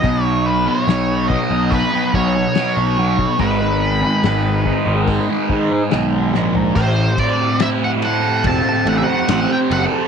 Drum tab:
CC |----------------|----------------|x---------------|
RD |----------------|----------------|--x-x-x-x-x-x-x-|
HH |o---o---o---o---|o---o---o---o---|----------------|
SD |----o-------o---|----o-------o-o-|----o-------o---|
FT |----------------|---------------o|----------------|
BD |o-----o-o-o----o|o-----o-o-o-----|o-o-----o-------|